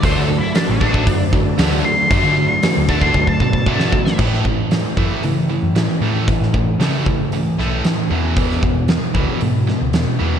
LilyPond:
<<
  \new Staff \with { instrumentName = "Lead electric guitar" } { \time 4/4 \key d \lydian \tempo 4 = 115 \tuplet 3/2 { c''8 a'8 e'8 d'8 d'4~ } d'16 r4 r16 c'''8~ | c'''4. a''16 c'''8 a''16 a''4. | r1 | r1 |
r1 | }
  \new Staff \with { instrumentName = "Tonewheel organ" } { \time 4/4 \key d \lydian <d' fis' a' d''>1~ | <d' fis' a' d''>1 | r1 | r1 |
r1 | }
  \new Staff \with { instrumentName = "Distorted electric guitar" } { \clef bass \time 4/4 \key d \lydian <d a d'>8 <d a>8 <d a>8 <d a d'>8 <d a>8 <d a>8 <d a d'>8 <d a>8 | <d a d'>8 <d a>8 <d a>8 <d a d'>8 <d a>8 <d a>8 <d a d'>8 <d a>8 | <a, e a>8 <a, e>8 <a, e>8 <a, e a>8 <a, e>8 <a, e>8 <a, e>8 <a, e a>8 | <a, e>8 <a, e>8 <a, e a>8 <a, e>8 <a, e>8 <a, e a>8 <a, e>8 <e, b, e>8 |
<e, b, e>8 <e, b,>8 <e, b,>8 <e, b, e>8 <e, b,>8 <e, b,>8 <e, b,>8 <e, b, e>8 | }
  \new Staff \with { instrumentName = "Distorted electric guitar" } { \clef bass \time 4/4 \key d \lydian <d fis a>8 <d fis>8 <d fis>8 <d fis a>8 <d fis>8 <d fis>8 <d fis a>8 <d fis>8 | <d fis a>8 <d fis>8 <d fis>8 <d fis a>8 <d fis>8 <d fis>8 <d fis a>8 <d fis>8 | <a, e a>8 <a, e>8 <a, e>8 <a, e a>8 <a, e>8 <a, e>8 <a, e>8 <a, e a>8 | <a, e>8 <a, e>8 <a, e a>8 <a, e>8 <a, e>8 <a, e a>8 <a, e>8 <e, b, e>8 |
<e, b, e>8 <e, b,>8 <e, b,>8 <e, b, e>8 <e, b,>8 <e, b,>8 <e, b,>8 <e, b, e>8 | }
  \new Staff \with { instrumentName = "Picked electric bass" } { \clef bass \time 4/4 \key d \lydian d,16 d,8 r8 a,,8. fis,4 d,8 r8 | fis,16 d8 r8 d,8. d,8 b,4. | a,4. fis,16 r16 cis8. fis,16 a,16 r16 a,8~ | a,16 a,8. cis4. b,,8 r8 e,8~ |
e,4. cis,16 r16 gis,8. cis,16 e,16 r16 e,8 | }
  \new DrumStaff \with { instrumentName = "Drums" } \drummode { \time 4/4 <hho bd>4 <hho sn>8 bd16 bd16 <hho bd>8 bd8 <hho sn>4 | <hho bd>4 <hho sn>8 bd16 bd16 bd16 bd16 bd16 bd16 bd16 sn16 bd16 sn16 | <cymc bd>16 sn16 bd8 <hho sn>8 bd8 hho4 <hho sn>4 | <hho bd>16 sn16 bd8 <hho sn>8 bd8 hho8 sn8 <hho sn>4 |
<hho bd>16 sn16 bd8 <hho sn>8 bd8 hho8 sn8 <hho sn>4 | }
>>